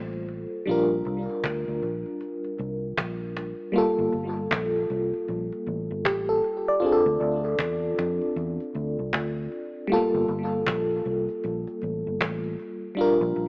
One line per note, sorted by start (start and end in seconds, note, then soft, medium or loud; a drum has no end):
0.00 0.44 A1 medium
0.00 0.61 G3 medium
0.00 0.62 A#3 medium
0.00 0.63 F4 medium
0.00 0.64 A4 medium
0.13 cajon slap soft
0.29 cajon slap soft
0.66 1.01 A#1 medium
0.66 3.70 G3 medium
0.66 3.70 D4 medium
0.66 3.71 F4 medium
0.66 cajon slap soft
0.71 3.72 A#4 medium
1.05 1.26 C2 medium
1.05 cajon slap soft
1.30 cajon slap soft
1.44 1.64 D2 medium
1.44 cajon bass loud
1.44 cajon slap loud
1.68 1.80 D2 medium
1.68 cajon slap soft
1.82 2.03 A#1 medium
1.82 cajon slap soft
2.06 cajon slap soft
2.21 cajon slap medium
2.44 cajon slap soft
2.58 2.93 C2 medium
2.58 cajon slap soft
2.97 3.52 A#1 medium
2.97 cajon bass loud
2.97 cajon slap loud
3.21 cajon slap soft
3.37 cajon slap medium
3.72 6.77 G3 medium
3.72 6.77 A#3 medium
3.72 6.78 F4 medium
3.72 cajon slap medium
3.78 6.03 A4 medium
3.99 4.11 G1 loud
4.12 4.47 G1 medium
4.12 cajon slap soft
4.37 cajon slap soft
4.51 4.85 A#1 medium
4.51 cajon bass loud
4.51 cajon slap loud
4.76 cajon slap soft
4.90 5.11 C2 medium
4.90 cajon slap soft
5.14 cajon slap soft
5.28 5.49 A#1 medium
5.28 cajon slap medium
5.52 cajon slap soft
5.67 5.87 A1 medium
5.67 cajon slap soft
5.91 6.05 G1 medium
6.05 6.39 A1 medium
6.05 6.28 G4 medium
6.05 cajon bass loud
6.05 cajon slap loud
6.29 6.65 A4 medium
6.29 cajon slap soft
6.44 cajon slap soft
6.68 7.04 D5 medium
6.80 9.85 C4 medium
6.80 9.84 F4 medium
6.80 cajon slap medium
6.84 9.86 D4 medium
6.84 6.92 G#4 medium
6.92 9.91 A4 medium
7.06 7.19 D2 loud
7.21 7.54 D2 medium
7.21 cajon slap soft
7.45 cajon slap soft
7.59 7.93 E2 medium
7.59 cajon bass loud
7.59 cajon slap loud
7.84 cajon slap soft
7.98 8.19 F2 loud
7.98 cajon slap soft
7.98 cajon slap medium
8.22 cajon slap soft
8.36 8.57 E2 loud
8.36 cajon slap medium
8.60 cajon slap soft
8.75 8.95 D2 medium
8.75 cajon slap soft
8.99 9.11 C2 medium
9.13 9.47 D2 medium
9.13 cajon bass loud
9.13 cajon slap loud
9.36 cajon slap soft
9.52 cajon slap soft
9.87 12.92 G3 medium
9.87 9.97 A3 medium
9.87 cajon slap medium
9.92 12.94 F4 medium
9.92 12.95 A4 medium
9.96 12.96 A#3 medium
10.14 10.27 G1 loud
10.28 10.62 G1 medium
10.28 cajon slap soft
10.52 cajon slap soft
10.67 11.01 A#1 medium
10.67 cajon bass loud
10.67 cajon slap loud
10.91 cajon slap soft
11.05 11.26 C2 medium
11.05 cajon slap soft
11.29 cajon slap soft
11.44 11.65 A#1 medium
11.44 cajon slap medium
11.67 cajon slap soft
11.82 12.03 A1 medium
11.82 cajon slap soft
12.07 12.19 G1 medium
12.21 12.54 A1 medium
12.21 cajon bass loud
12.21 cajon slap loud
12.44 cajon slap soft
12.59 cajon slap soft
12.95 13.48 G3 medium
12.95 13.48 D4 medium
12.95 13.48 F4 medium
12.95 cajon slap medium
13.01 13.48 A#4 medium
13.21 13.34 A#1 loud
13.36 13.48 A#1 medium
13.36 cajon slap soft